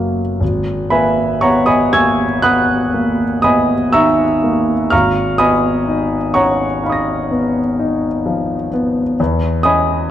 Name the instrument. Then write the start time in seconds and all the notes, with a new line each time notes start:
grand piano
Already playing: F#1 F#3 A#3 C#4 F#5 A#5 C#6 G#6
0.40 G#1
0.90 A#3 B4 E5 G#5 B5
1.41 B3 C#5 F#5 A#5 C#6
1.66 D#5 G#5 B5 D#6
1.93 A#3 G#5 C#6 E6 G#6
2.42 B3 F#5 B5 D#6 F#6
2.94 A#3
3.42 B3 D#5 G#5 B5 D#6
3.92 D#3 E5 A#5 C#6 E6
4.44 A#3
4.90 G#1 F5 A#5 C#6 F6
5.38 B3 D#5 G#5 B5 D#6
5.88 D#4
6.34 C#4 C#5 F#5 A#5 C#6
6.83 D#4 F5 B5
6.90 D#6 A#6
7.31 B3
7.79 D#4
8.26 F3
8.73 B3
9.20 E2
9.63 C#4 D#5 G#5 B5 D#6